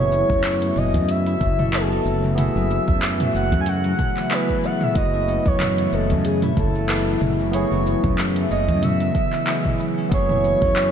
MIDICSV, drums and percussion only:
0, 0, Header, 1, 3, 480
1, 0, Start_track
1, 0, Key_signature, 3, "minor"
1, 0, Tempo, 645161
1, 1768, Time_signature, 4, 2, 24, 8
1, 8121, End_track
2, 0, Start_track
2, 0, Title_t, "Udu"
2, 222, Note_on_c, 9, 64, 90
2, 297, Note_off_c, 9, 64, 0
2, 698, Note_on_c, 9, 64, 94
2, 772, Note_off_c, 9, 64, 0
2, 1049, Note_on_c, 9, 64, 83
2, 1123, Note_off_c, 9, 64, 0
2, 2145, Note_on_c, 9, 64, 87
2, 2219, Note_off_c, 9, 64, 0
2, 2618, Note_on_c, 9, 64, 109
2, 2692, Note_off_c, 9, 64, 0
2, 4065, Note_on_c, 9, 64, 92
2, 4139, Note_off_c, 9, 64, 0
2, 4548, Note_on_c, 9, 64, 100
2, 4622, Note_off_c, 9, 64, 0
2, 4885, Note_on_c, 9, 64, 92
2, 4960, Note_off_c, 9, 64, 0
2, 5978, Note_on_c, 9, 64, 98
2, 6053, Note_off_c, 9, 64, 0
2, 6461, Note_on_c, 9, 64, 104
2, 6535, Note_off_c, 9, 64, 0
2, 7902, Note_on_c, 9, 64, 100
2, 7976, Note_off_c, 9, 64, 0
2, 8121, End_track
3, 0, Start_track
3, 0, Title_t, "Drums"
3, 88, Note_on_c, 9, 69, 77
3, 163, Note_off_c, 9, 69, 0
3, 221, Note_on_c, 9, 36, 98
3, 222, Note_on_c, 9, 69, 31
3, 295, Note_off_c, 9, 36, 0
3, 297, Note_off_c, 9, 69, 0
3, 326, Note_on_c, 9, 39, 94
3, 326, Note_on_c, 9, 42, 67
3, 331, Note_on_c, 9, 69, 43
3, 401, Note_off_c, 9, 39, 0
3, 401, Note_off_c, 9, 42, 0
3, 405, Note_off_c, 9, 69, 0
3, 461, Note_on_c, 9, 42, 49
3, 466, Note_on_c, 9, 69, 23
3, 535, Note_off_c, 9, 42, 0
3, 540, Note_off_c, 9, 69, 0
3, 566, Note_on_c, 9, 45, 78
3, 571, Note_on_c, 9, 69, 73
3, 641, Note_off_c, 9, 45, 0
3, 645, Note_off_c, 9, 69, 0
3, 702, Note_on_c, 9, 42, 44
3, 706, Note_on_c, 9, 69, 32
3, 776, Note_off_c, 9, 42, 0
3, 781, Note_off_c, 9, 69, 0
3, 808, Note_on_c, 9, 42, 69
3, 812, Note_on_c, 9, 69, 42
3, 882, Note_off_c, 9, 42, 0
3, 886, Note_off_c, 9, 69, 0
3, 941, Note_on_c, 9, 42, 34
3, 945, Note_on_c, 9, 69, 22
3, 1015, Note_off_c, 9, 42, 0
3, 1020, Note_off_c, 9, 69, 0
3, 1048, Note_on_c, 9, 36, 96
3, 1052, Note_on_c, 9, 69, 72
3, 1122, Note_off_c, 9, 36, 0
3, 1126, Note_off_c, 9, 69, 0
3, 1183, Note_on_c, 9, 45, 76
3, 1188, Note_on_c, 9, 69, 34
3, 1258, Note_off_c, 9, 45, 0
3, 1262, Note_off_c, 9, 69, 0
3, 1289, Note_on_c, 9, 39, 98
3, 1289, Note_on_c, 9, 42, 67
3, 1293, Note_on_c, 9, 69, 42
3, 1363, Note_off_c, 9, 39, 0
3, 1363, Note_off_c, 9, 42, 0
3, 1368, Note_off_c, 9, 69, 0
3, 1427, Note_on_c, 9, 69, 23
3, 1501, Note_off_c, 9, 69, 0
3, 1531, Note_on_c, 9, 69, 74
3, 1606, Note_off_c, 9, 69, 0
3, 1667, Note_on_c, 9, 69, 32
3, 1741, Note_off_c, 9, 69, 0
3, 1769, Note_on_c, 9, 42, 66
3, 1769, Note_on_c, 9, 45, 70
3, 1774, Note_on_c, 9, 69, 42
3, 1844, Note_off_c, 9, 42, 0
3, 1844, Note_off_c, 9, 45, 0
3, 1848, Note_off_c, 9, 69, 0
3, 1907, Note_on_c, 9, 69, 24
3, 1981, Note_off_c, 9, 69, 0
3, 2013, Note_on_c, 9, 69, 85
3, 2088, Note_off_c, 9, 69, 0
3, 2141, Note_on_c, 9, 36, 102
3, 2147, Note_on_c, 9, 69, 30
3, 2216, Note_off_c, 9, 36, 0
3, 2221, Note_off_c, 9, 69, 0
3, 2248, Note_on_c, 9, 39, 109
3, 2248, Note_on_c, 9, 42, 68
3, 2253, Note_on_c, 9, 69, 45
3, 2323, Note_off_c, 9, 39, 0
3, 2323, Note_off_c, 9, 42, 0
3, 2327, Note_off_c, 9, 69, 0
3, 2382, Note_on_c, 9, 42, 47
3, 2382, Note_on_c, 9, 45, 78
3, 2386, Note_on_c, 9, 69, 25
3, 2456, Note_off_c, 9, 42, 0
3, 2456, Note_off_c, 9, 45, 0
3, 2460, Note_off_c, 9, 69, 0
3, 2492, Note_on_c, 9, 69, 79
3, 2566, Note_off_c, 9, 69, 0
3, 2621, Note_on_c, 9, 42, 41
3, 2625, Note_on_c, 9, 69, 34
3, 2695, Note_off_c, 9, 42, 0
3, 2700, Note_off_c, 9, 69, 0
3, 2725, Note_on_c, 9, 42, 64
3, 2729, Note_on_c, 9, 69, 42
3, 2799, Note_off_c, 9, 42, 0
3, 2804, Note_off_c, 9, 69, 0
3, 2859, Note_on_c, 9, 42, 31
3, 2863, Note_on_c, 9, 69, 23
3, 2933, Note_off_c, 9, 42, 0
3, 2938, Note_off_c, 9, 69, 0
3, 2967, Note_on_c, 9, 45, 74
3, 2968, Note_on_c, 9, 36, 100
3, 2972, Note_on_c, 9, 69, 74
3, 3042, Note_off_c, 9, 36, 0
3, 3042, Note_off_c, 9, 45, 0
3, 3046, Note_off_c, 9, 69, 0
3, 3101, Note_on_c, 9, 39, 34
3, 3105, Note_on_c, 9, 69, 32
3, 3175, Note_off_c, 9, 39, 0
3, 3179, Note_off_c, 9, 69, 0
3, 3206, Note_on_c, 9, 39, 97
3, 3206, Note_on_c, 9, 42, 67
3, 3211, Note_on_c, 9, 69, 46
3, 3281, Note_off_c, 9, 39, 0
3, 3281, Note_off_c, 9, 42, 0
3, 3285, Note_off_c, 9, 69, 0
3, 3341, Note_on_c, 9, 36, 65
3, 3345, Note_on_c, 9, 69, 25
3, 3415, Note_off_c, 9, 36, 0
3, 3419, Note_off_c, 9, 69, 0
3, 3449, Note_on_c, 9, 69, 81
3, 3524, Note_off_c, 9, 69, 0
3, 3579, Note_on_c, 9, 45, 76
3, 3583, Note_on_c, 9, 69, 34
3, 3653, Note_off_c, 9, 45, 0
3, 3658, Note_off_c, 9, 69, 0
3, 3686, Note_on_c, 9, 42, 61
3, 3687, Note_on_c, 9, 36, 127
3, 3690, Note_on_c, 9, 69, 48
3, 3760, Note_off_c, 9, 42, 0
3, 3762, Note_off_c, 9, 36, 0
3, 3765, Note_off_c, 9, 69, 0
3, 3824, Note_on_c, 9, 69, 23
3, 3898, Note_off_c, 9, 69, 0
3, 3931, Note_on_c, 9, 69, 80
3, 4006, Note_off_c, 9, 69, 0
3, 4060, Note_on_c, 9, 36, 108
3, 4066, Note_on_c, 9, 69, 33
3, 4134, Note_off_c, 9, 36, 0
3, 4140, Note_off_c, 9, 69, 0
3, 4167, Note_on_c, 9, 39, 104
3, 4167, Note_on_c, 9, 42, 63
3, 4167, Note_on_c, 9, 45, 73
3, 4171, Note_on_c, 9, 69, 43
3, 4241, Note_off_c, 9, 39, 0
3, 4241, Note_off_c, 9, 42, 0
3, 4241, Note_off_c, 9, 45, 0
3, 4245, Note_off_c, 9, 69, 0
3, 4302, Note_on_c, 9, 42, 46
3, 4307, Note_on_c, 9, 69, 24
3, 4377, Note_off_c, 9, 42, 0
3, 4381, Note_off_c, 9, 69, 0
3, 4409, Note_on_c, 9, 69, 85
3, 4483, Note_off_c, 9, 69, 0
3, 4539, Note_on_c, 9, 42, 43
3, 4543, Note_on_c, 9, 69, 34
3, 4613, Note_off_c, 9, 42, 0
3, 4618, Note_off_c, 9, 69, 0
3, 4648, Note_on_c, 9, 42, 59
3, 4652, Note_on_c, 9, 69, 46
3, 4722, Note_off_c, 9, 42, 0
3, 4726, Note_off_c, 9, 69, 0
3, 4779, Note_on_c, 9, 42, 31
3, 4779, Note_on_c, 9, 45, 77
3, 4783, Note_on_c, 9, 69, 23
3, 4853, Note_off_c, 9, 42, 0
3, 4853, Note_off_c, 9, 45, 0
3, 4858, Note_off_c, 9, 69, 0
3, 4887, Note_on_c, 9, 36, 105
3, 4890, Note_on_c, 9, 69, 80
3, 4962, Note_off_c, 9, 36, 0
3, 4964, Note_off_c, 9, 69, 0
3, 5022, Note_on_c, 9, 69, 35
3, 5096, Note_off_c, 9, 69, 0
3, 5127, Note_on_c, 9, 39, 100
3, 5127, Note_on_c, 9, 42, 64
3, 5131, Note_on_c, 9, 69, 45
3, 5201, Note_off_c, 9, 39, 0
3, 5201, Note_off_c, 9, 42, 0
3, 5206, Note_off_c, 9, 69, 0
3, 5265, Note_on_c, 9, 69, 25
3, 5339, Note_off_c, 9, 69, 0
3, 5364, Note_on_c, 9, 45, 76
3, 5369, Note_on_c, 9, 69, 79
3, 5439, Note_off_c, 9, 45, 0
3, 5443, Note_off_c, 9, 69, 0
3, 5503, Note_on_c, 9, 69, 34
3, 5577, Note_off_c, 9, 69, 0
3, 5606, Note_on_c, 9, 42, 64
3, 5610, Note_on_c, 9, 69, 45
3, 5680, Note_off_c, 9, 42, 0
3, 5685, Note_off_c, 9, 69, 0
3, 5745, Note_on_c, 9, 69, 23
3, 5819, Note_off_c, 9, 69, 0
3, 5851, Note_on_c, 9, 69, 83
3, 5926, Note_off_c, 9, 69, 0
3, 5980, Note_on_c, 9, 36, 110
3, 5981, Note_on_c, 9, 42, 27
3, 5981, Note_on_c, 9, 45, 71
3, 5985, Note_on_c, 9, 69, 31
3, 6054, Note_off_c, 9, 36, 0
3, 6055, Note_off_c, 9, 42, 0
3, 6055, Note_off_c, 9, 45, 0
3, 6060, Note_off_c, 9, 69, 0
3, 6088, Note_on_c, 9, 39, 98
3, 6088, Note_on_c, 9, 42, 62
3, 6092, Note_on_c, 9, 69, 43
3, 6162, Note_off_c, 9, 39, 0
3, 6162, Note_off_c, 9, 42, 0
3, 6167, Note_off_c, 9, 69, 0
3, 6221, Note_on_c, 9, 42, 44
3, 6225, Note_on_c, 9, 69, 24
3, 6295, Note_off_c, 9, 42, 0
3, 6300, Note_off_c, 9, 69, 0
3, 6332, Note_on_c, 9, 69, 83
3, 6406, Note_off_c, 9, 69, 0
3, 6462, Note_on_c, 9, 42, 39
3, 6467, Note_on_c, 9, 69, 34
3, 6536, Note_off_c, 9, 42, 0
3, 6541, Note_off_c, 9, 69, 0
3, 6567, Note_on_c, 9, 42, 56
3, 6567, Note_on_c, 9, 45, 75
3, 6572, Note_on_c, 9, 69, 44
3, 6642, Note_off_c, 9, 42, 0
3, 6642, Note_off_c, 9, 45, 0
3, 6646, Note_off_c, 9, 69, 0
3, 6699, Note_on_c, 9, 42, 29
3, 6703, Note_on_c, 9, 69, 23
3, 6773, Note_off_c, 9, 42, 0
3, 6778, Note_off_c, 9, 69, 0
3, 6806, Note_on_c, 9, 36, 95
3, 6809, Note_on_c, 9, 69, 82
3, 6881, Note_off_c, 9, 36, 0
3, 6884, Note_off_c, 9, 69, 0
3, 6939, Note_on_c, 9, 39, 30
3, 6943, Note_on_c, 9, 69, 32
3, 7013, Note_off_c, 9, 39, 0
3, 7018, Note_off_c, 9, 69, 0
3, 7046, Note_on_c, 9, 39, 90
3, 7046, Note_on_c, 9, 42, 62
3, 7050, Note_on_c, 9, 69, 44
3, 7120, Note_off_c, 9, 39, 0
3, 7120, Note_off_c, 9, 42, 0
3, 7125, Note_off_c, 9, 69, 0
3, 7179, Note_on_c, 9, 36, 57
3, 7181, Note_on_c, 9, 45, 80
3, 7186, Note_on_c, 9, 69, 22
3, 7253, Note_off_c, 9, 36, 0
3, 7255, Note_off_c, 9, 45, 0
3, 7260, Note_off_c, 9, 69, 0
3, 7292, Note_on_c, 9, 69, 80
3, 7366, Note_off_c, 9, 69, 0
3, 7425, Note_on_c, 9, 69, 32
3, 7499, Note_off_c, 9, 69, 0
3, 7526, Note_on_c, 9, 36, 125
3, 7528, Note_on_c, 9, 42, 63
3, 7532, Note_on_c, 9, 69, 44
3, 7600, Note_off_c, 9, 36, 0
3, 7602, Note_off_c, 9, 42, 0
3, 7607, Note_off_c, 9, 69, 0
3, 7658, Note_on_c, 9, 45, 78
3, 7663, Note_on_c, 9, 69, 22
3, 7733, Note_off_c, 9, 45, 0
3, 7737, Note_off_c, 9, 69, 0
3, 7771, Note_on_c, 9, 69, 84
3, 7845, Note_off_c, 9, 69, 0
3, 7900, Note_on_c, 9, 36, 111
3, 7903, Note_on_c, 9, 69, 31
3, 7974, Note_off_c, 9, 36, 0
3, 7978, Note_off_c, 9, 69, 0
3, 8006, Note_on_c, 9, 39, 93
3, 8006, Note_on_c, 9, 42, 61
3, 8010, Note_on_c, 9, 69, 44
3, 8080, Note_off_c, 9, 39, 0
3, 8080, Note_off_c, 9, 42, 0
3, 8085, Note_off_c, 9, 69, 0
3, 8121, End_track
0, 0, End_of_file